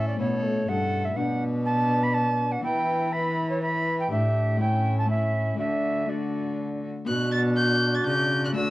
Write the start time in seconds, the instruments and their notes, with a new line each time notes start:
Already playing: cello A2, harp A2 A3 C#4 E4, trombone C#4, violin A4
0.08 recorder D5
0.16 cello B2, harp B2 A3 C#4 E4, trombone B3, violin A4, recorder C#5
0.45 trombone A3
0.68 harp G2, cello G2, trombone A3, violin A4, recorder F#5
1.05 recorder E5
1.14 harp B2 B3 D4, cello B2, trombone D4, violin B4, recorder F#5
1.66 recorder A5
2.03 recorder B5
2.14 recorder A5
2.52 recorder F#5
2.61 harp E3 B3 E4, cello E3, trombone E4, violin B4, recorder G5
3.13 trombone E4, violin B4, recorder B5
3.50 recorder C#5
3.62 trombone E4, violin B4, recorder B5
4.00 recorder G5
4.09 harp A2 D4 E4, cello A2, trombone D4, violin G4, recorder E5
4.56 harp A3 C#4 E4, recorder G5
4.61 trombone C#4, violin E4
4.98 recorder A5
5.05 harp A3 C#4 E4
5.10 trombone C#4, violin E4, recorder E5
5.55 cello D3, harp A3 F#4 D5, trombone D4, recorder E5
5.59 harp D3, violin F#4
6.05 harp A3 F#4, trombone D4, violin F#4
6.09 recorder D5
7.05 cello B2, harp B2 B3 F#4, trombone D4, recorder F#4, violin F#6
7.32 violin A6
7.56 violin G6
7.95 violin A6
8.06 cello C#3, harp C#3, violin G6
8.45 violin F#6
8.52 cello D3, harp D3 A3 D4 F#4, trombone D4, recorder F#4, violin E6